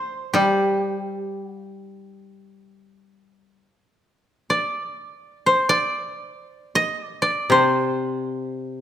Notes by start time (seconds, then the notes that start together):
Already playing: C5 D5
0.34 G3 G4
1.42 F#4
1.56 F4
1.70 E4
1.84 D#4
4.50 D5
5.46 C5
5.69 D5
6.75 D#5
7.01 D5
7.22 D5
7.50 C3 C5